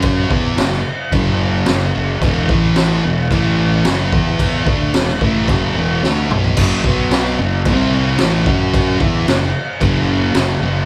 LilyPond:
<<
  \new Staff \with { instrumentName = "Distorted electric guitar" } { \clef bass \time 4/4 \key fis \minor \tempo 4 = 110 <fis cis' fis'>8 <e b e'>8 <fis, cis>8 r8 <fis, cis fis>4 <fis, cis>8 <fis, cis>8 | <e, b, e>8 <a, e a>4 <e, b,>8 <a, e a>4 <fis, cis fis>8 <e b e'>8~ | <e b e'>8 <d a d'>8 <e, b,>8 <a, e a>8 <fis, cis fis>8 <e, b, e>8 <d a d'>8 <b, fis b>8 | <fis, cis fis>8 <b, fis b>4 <fis, cis>8 <c g c'>4 <a, e a>8 <fis cis' fis'>8~ |
<fis cis' fis'>8 <e b e'>8 <fis, cis>8 r8 <fis, cis fis>4 <fis, cis>8 <fis, cis>8 | }
  \new Staff \with { instrumentName = "Fingered electric bass" } { \clef bass \time 4/4 \key fis \minor fis,8 e,8 fis,,8 r8 fis,,4 fis,,8 fis,,8 | e,,8 a,,4 e,,8 a,,4 fis,,8 e,8~ | e,8 d,8 e,,8 a,,8 fis,,8 e,,8 d,8 b,,8 | fis,,8 b,,4 fis,,8 c,4 a,,8 fis,8~ |
fis,8 e,8 fis,,8 r8 fis,,4 fis,,8 fis,,8 | }
  \new DrumStaff \with { instrumentName = "Drums" } \drummode { \time 4/4 <cymc bd>8 bd8 <cymc sn>16 sn8. <cymc bd>4 <cymc sn>4 | <cymc bd>8 bd8 <cymc sn>4 <cymc bd>4 <cymc sn>8 bd8 | <cymc bd>8 bd8 <cymc sn>16 sn16 bd8 <cymc bd>4 sn8 toml16 tomfh16 | <cymc bd>8 bd8 <cymc sn>16 sn8. <cymc bd>4 <cymc sn>8 bd8 |
<cymc bd>8 bd8 <cymc sn>4 <cymc bd>4 <cymc sn>4 | }
>>